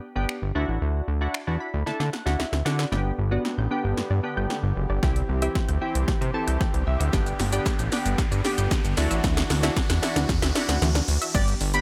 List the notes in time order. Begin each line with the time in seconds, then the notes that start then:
0.16 G1 B3 D4 G4
0.29 finger snap
0.42 G1
0.55 D2 D4 E4 F#4
0.68 A1
0.82 D2
1.08 D2
1.21 D4 E4 F#4
1.34 finger snap
1.47 E2 D4 E4 F#4
1.60 B5
1.74 D2
1.86 D3 D4 E4 A4 A5, snare
2.00 D3, snare
2.13 F#5, snare
2.26 D2 D4 E4 F#4, snare
2.39 D2 E5, snare
2.52 D2, snare
2.65 D3 D4 E4 F#4 D5, snare
2.79 snare
2.92 G1 D3 B3 D4 G4, snare, riser
3.18 G1 G4
3.31 B3 D4 F#4 D5
3.45 B5, snare
3.58 A1 G6
3.71 B3 D4 G4
3.84 G1 B3
3.97 G2 G4, snare
4.10 G2 D5
4.23 B3 D4 G4
4.37 G1 G6
4.50 D3, snare
4.63 G1 B3
4.76 F#1
4.89 G1 D4 G4 D5
5.03 C2 E3 C4 E4 G4, kick, snare
5.16 closed hi-hat
5.29 C2 G4
5.42 C4 E4 G4 E5, closed hi-hat
5.55 C6, kick, snare
5.69 D2 G6, closed hi-hat
5.81 C4 E4 G4
5.95 C2 C4, closed hi-hat
6.08 C3 G4, kick, snare
6.21 C3 E5, closed hi-hat
6.34 C4 E4 A4 A5
6.47 C2 G6, closed hi-hat
6.61 E3 G5, kick, snare
6.74 C2 C4, closed hi-hat
6.87 C2 E5
6.99 D2 E4 F#4 E5, closed hi-hat
7.13 G1 D3 B3 D4 G4, kick, snare, shaker
7.26 closed hi-hat, shaker
7.39 G1 G4, snare, open hi-hat, shaker
7.53 B3 D4 G4 D5, closed hi-hat, shaker
7.66 B5, kick, snare, shaker
7.79 A1 G6, closed hi-hat, shaker
7.92 B3 D4 G4, snare, open hi-hat, shaker
8.05 G1 B3, closed hi-hat, shaker
8.18 G2 G4, kick, snare, shaker
8.31 G2 D5, closed hi-hat, shaker
8.45 B3 D4 G4, snare, open hi-hat, shaker
8.58 G1 G6, closed hi-hat, shaker
8.71 D3, kick, snare, shaker
8.84 G1 B3, closed hi-hat, shaker
8.97 D2 E3 D4 E4 F#4, snare, open hi-hat, shaker
9.11 A1 E5, closed hi-hat, shaker
9.24 D2 E3, kick, snare, shaker
9.37 snare, closed hi-hat, shaker
9.50 D2 F#4, snare, open hi-hat, shaker
9.63 D4 E4 F#4 E5, snare, closed hi-hat, shaker
9.77 D6, kick, snare, shaker
9.90 E2 F#6, snare, closed hi-hat, shaker
10.02 D4 E4 F#4, snare, open hi-hat, shaker
10.16 D2 D4, snare, closed hi-hat, shaker
10.29 E2 F#4, kick, snare, shaker
10.42 D2 E5, snare, closed hi-hat, shaker
10.55 D4 E4 F#4, snare, open hi-hat, shaker
10.69 D2 F#6, snare, closed hi-hat, shaker
10.82 D2 E3, snare, shaker
10.95 D4, snare, closed hi-hat, shaker
11.08 D2, open hi-hat, shaker
11.21 E4 F#4 E5, closed hi-hat, shaker
11.34 G1 G3 B3 D4 G4 D5, kick, crash, shaker
11.48 closed hi-hat, shaker
11.61 G1, open hi-hat, shaker
11.74 G3 B3 D4 G4 B5, closed hi-hat, shaker